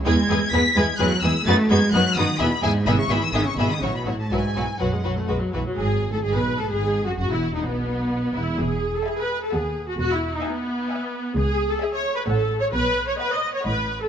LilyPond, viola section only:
\new Staff \with { instrumentName = "Viola section" } { \time 3/4 \key e \major \tempo 4 = 128 <gis e'>8 <gis e'>8 <gis e'>8 <gis e'>8 <gis e'>8 <gis e'>8 | <b dis'>8 <b dis'>8 <b dis'>8 <b dis'>8 <b e'>8 <b e'>8 | <b e'>8 <b e'>8 <b e'>8 <b e'>8 <fis e'>8 <fis e'>8 | <fis e'>8 <fis e'>8 fis16 gis16 fis16 a16 gis16 fis16 e16 fis16 |
gis'8. a'16 gis'16 b'8 a'16 gis'8. fis'16 | fis'16 e'8 dis'16 b4. e'8 | gis'8. a'16 gis'16 b'8 a'16 gis'8. fis'16 | fis'16 e'8 dis'16 b2 |
gis'8. a'16 gis'16 cis''8 b'16 a'8. cis''16 | b'8. cis''16 b'16 dis''8 cis''16 b'8. a'16 | }